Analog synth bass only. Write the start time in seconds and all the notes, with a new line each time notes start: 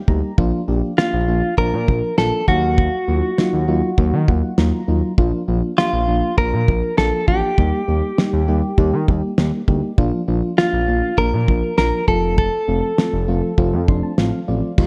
0.08 D2
0.38 A#1
0.68 A#1
1.13 A#1
1.28 A#1
1.58 A#1
1.73 A#2
1.88 A#1
2.18 A#1
2.48 D#2
3.08 D#2
3.53 D#2
3.68 D#2
3.98 D#2
4.13 D#3
4.28 D#2
4.58 D#2
4.88 D#2
5.18 A#1
5.48 A#1
5.93 A#1
6.08 A#1
6.38 A#1
6.53 A#2
6.68 A#1
6.98 A#1
7.28 A1
7.58 D#2
7.88 D#2
8.33 D#2
8.48 D#2
8.78 D#2
8.93 D#3
9.08 D#2
9.38 D#2
9.68 D2
9.98 A#1
10.28 A#1
10.73 A#1
10.88 A#1
11.18 A#1
11.33 A#2
11.48 A#1
11.78 A#1
12.08 F1
12.68 F1
13.13 F1
13.28 F1
13.58 F1
13.73 F2
13.88 F1
14.18 A1
14.48 A1
14.78 D#2